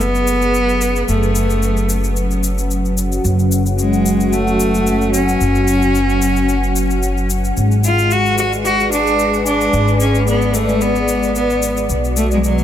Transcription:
0.00 1.06 F#1 medium
0.00 7.57 F#3 medium
0.00 1.08 B3 loud
0.00 7.57 C#4 medium
0.00 3.09 G#4 medium
0.00 7.57 B4 medium
0.00 1.08 C#5 medium
0.00 12.64 F#5 medium
0.00 shaker soft
0.15 shaker soft
0.27 shaker medium
0.42 shaker soft
0.54 shaker soft
0.69 shaker soft
0.81 shaker medium
0.96 shaker soft
1.08 3.22 F#1 medium
1.08 2.12 A3 medium
1.08 shaker soft
1.23 shaker soft
1.35 shaker medium
1.50 shaker soft
1.63 shaker soft
1.77 shaker soft
1.89 shaker medium
2.04 shaker soft
2.16 shaker soft
2.31 shaker soft
2.44 shaker medium
2.58 shaker soft
2.71 shaker soft
2.85 shaker soft
2.92 8.75 F#4 medium
2.98 shaker medium
3.12 shaker soft
3.24 5.38 F#1 medium
3.24 shaker soft
3.39 shaker soft
3.52 shaker medium
3.66 shaker soft
3.79 4.34 G#3 medium
3.79 shaker soft
3.93 shaker soft
4.06 shaker medium
4.20 shaker soft
4.33 5.13 A3 medium
4.33 shaker soft
4.47 shaker soft
4.60 shaker medium
4.75 shaker soft
4.87 shaker soft
5.01 shaker soft
5.14 7.26 C#4 medium
5.14 shaker medium
5.28 shaker soft
5.41 7.54 F#1 medium
5.41 shaker soft
5.55 shaker soft
5.68 shaker medium
5.82 shaker soft
5.95 shaker soft
6.10 shaker soft
6.22 shaker medium
6.36 shaker soft
6.49 shaker soft
6.63 shaker soft
6.76 shaker medium
6.91 shaker soft
7.03 shaker soft
7.17 shaker soft
7.30 shaker medium
7.44 shaker soft
7.57 9.71 G#1 medium
7.57 11.89 G#3 medium
7.57 shaker soft
7.71 shaker soft
7.84 8.13 F4 medium
7.84 shaker medium
7.93 11.89 G#4 medium
7.99 shaker soft
8.11 8.38 F#4 loud
8.11 shaker soft
8.18 12.64 B4 medium
8.26 12.64 D5 medium
8.26 shaker soft
8.38 8.51 F#4 medium
8.38 shaker medium
8.53 shaker soft
8.65 8.90 F#4 loud
8.65 shaker soft
8.80 shaker soft
8.92 9.42 D4 loud
8.92 shaker medium
9.07 shaker soft
9.19 shaker soft
9.34 shaker soft
9.46 9.96 D4 medium
9.46 shaker medium
9.61 shaker soft
9.73 11.87 G#1 medium
9.73 shaker soft
9.88 shaker soft
10.00 10.25 C#4 medium
10.00 shaker medium
10.15 shaker soft
10.27 10.56 B3 medium
10.27 shaker soft
10.42 shaker soft
10.54 10.83 A3 medium
10.54 shaker medium
10.69 shaker soft
10.81 11.35 B3 medium
10.81 shaker soft
10.96 shaker soft
11.08 shaker medium
11.23 shaker soft
11.35 11.74 B3 medium
11.35 shaker soft
11.50 shaker soft
11.63 shaker medium
11.77 shaker soft
11.89 12.64 B1 medium
11.89 12.64 B2 medium
11.89 shaker soft
12.04 12.64 F#4 medium
12.04 shaker soft
12.17 12.30 A3 medium
12.17 shaker medium
12.30 12.36 G#3 medium
12.30 12.64 B3 medium
12.30 shaker soft
12.34 12.39 F#3 medium
12.34 12.45 G#3 medium
12.44 12.64 F#3 medium
12.44 shaker soft
12.58 12.64 C#5 medium
12.58 shaker soft

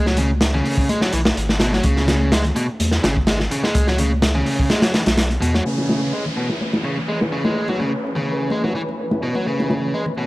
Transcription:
0.00 0.62 C#2 loud
0.06 0.17 F#3 medium
0.06 snare soft
0.06 muted conga medium
0.17 0.30 C#3 medium
0.17 closed hi-hat medium
0.17 high conga medium
0.17 low conga medium
0.41 snare loud
0.41 closed hi-hat medium
0.54 0.88 C#3 medium
0.54 high conga medium
0.54 low conga medium
0.65 open hi-hat medium
0.78 kick medium
0.89 0.99 G#3 medium
0.89 closed hi-hat medium
0.89 high conga medium
1.01 1.12 F#3 medium
1.01 snare soft
1.13 1.33 B1 medium
1.13 1.19 E3 loud
1.13 closed hi-hat medium
1.25 snare loud
1.25 high conga medium
1.37 1.81 G#1 loud
1.37 closed hi-hat medium
1.49 snare medium
1.49 muted conga medium
1.60 1.72 B2 medium
1.60 snare loud
1.60 closed hi-hat medium
1.73 1.83 F#3 medium
1.73 snare soft
1.73 high conga medium
1.83 2.52 C#2 medium
1.83 2.31 C#3 medium
1.83 kick loud
1.83 closed hi-hat medium
1.97 snare soft
1.97 muted conga medium
2.07 snare medium
2.07 closed hi-hat medium
2.07 high conga medium
2.07 low conga medium
2.32 2.42 G#3 medium
2.32 snare loud
2.32 closed hi-hat medium
2.44 closed hi-hat soft
2.44 high conga medium
2.44 low conga medium
2.56 2.66 B2 medium
2.56 closed hi-hat medium
2.80 2.99 E2 medium
2.80 closed hi-hat medium
2.80 high conga medium
2.91 snare soft
2.91 muted conga medium
3.03 3.48 G#1 medium
3.03 3.15 C#3 medium
3.03 snare loud
3.03 closed hi-hat medium
3.15 kick medium
3.15 high conga medium
3.27 3.37 G#3 medium
3.27 snare loud
3.27 closed hi-hat medium
3.39 snare soft
3.39 low conga medium
3.51 3.61 C#3 medium
3.51 closed hi-hat medium
3.64 3.86 G#3 medium
3.64 snare soft
3.64 high conga medium
3.75 4.43 C#2 loud
3.75 kick loud
3.75 closed hi-hat loud
3.87 3.98 F#3 medium
3.87 snare soft
3.87 muted conga medium
3.98 4.11 C#3 medium
3.98 closed hi-hat medium
3.98 high conga medium
3.98 low conga medium
4.22 snare loud
4.22 closed hi-hat medium
4.34 4.69 C#3 medium
4.34 high conga medium
4.34 low conga medium
4.46 open hi-hat medium
4.59 kick medium
4.70 4.80 G#3 medium
4.70 snare medium
4.70 closed hi-hat medium
4.70 high conga medium
4.82 4.93 F#3 medium
4.82 snare loud
4.82 closed hi-hat medium
4.94 5.00 E3 loud
4.94 snare medium
4.94 closed hi-hat medium
5.06 5.38 B1 medium
5.06 snare loud
5.06 closed hi-hat medium
5.06 muted conga medium
5.06 high conga medium
5.17 snare loud
5.17 closed hi-hat medium
5.30 closed hi-hat soft
5.30 muted conga medium
5.41 5.61 E2 loud
5.41 5.53 B2 medium
5.41 closed hi-hat medium
5.54 5.64 F#3 medium
5.54 snare soft
5.54 high conga medium
5.65 6.12 C#3 medium
5.65 10.27 E3 medium
5.65 10.27 C#4 medium
5.65 10.27 B4 medium
5.65 closed hi-hat medium
5.65 downlifter medium
5.78 snare soft
5.78 muted conga medium
5.88 snare medium
5.88 closed hi-hat medium
5.88 high conga medium
5.88 low conga medium
6.13 6.23 G#3 medium
6.13 closed hi-hat medium
6.26 closed hi-hat soft
6.26 high conga medium
6.26 low conga medium
6.37 6.47 B2 medium
6.37 closed hi-hat medium
6.49 snare soft
6.61 closed hi-hat medium
6.61 high conga medium
6.73 snare soft
6.73 muted conga soft
6.84 6.96 C#3 medium
6.84 closed hi-hat medium
6.97 high conga medium
7.08 7.18 G#3 medium
7.08 closed hi-hat medium
7.21 snare medium
7.21 low conga medium
7.32 7.42 C#3 medium
7.32 closed hi-hat medium
7.44 7.67 G#3 medium
7.44 snare soft
7.44 high conga medium
7.56 closed hi-hat medium
7.68 7.79 F#3 medium
7.68 snare soft
7.68 muted conga medium
7.80 7.92 C#3 medium
7.80 closed hi-hat medium
7.80 high conga medium
7.80 low conga medium
8.03 closed hi-hat medium
8.15 8.50 C#3 medium
8.15 high conga medium
8.15 low conga medium
8.28 open hi-hat medium
8.50 8.61 G#3 medium
8.50 closed hi-hat medium
8.50 high conga medium
8.64 8.74 F#3 medium
8.64 snare soft
8.75 8.81 E3 loud
8.75 closed hi-hat medium
8.88 high conga medium
8.99 closed hi-hat medium
9.11 snare soft
9.11 muted conga soft
9.23 9.34 B2 medium
9.23 closed hi-hat medium
9.35 9.45 F#3 medium
9.35 high conga medium
9.46 9.93 C#3 medium
9.46 closed hi-hat medium
9.59 snare soft
9.59 muted conga medium
9.70 snare medium
9.70 high conga medium
9.70 low conga medium
9.94 10.04 G#3 medium
9.94 closed hi-hat medium
10.06 closed hi-hat soft
10.06 high conga medium
10.06 low conga medium
10.18 10.27 B2 medium
10.18 closed hi-hat medium

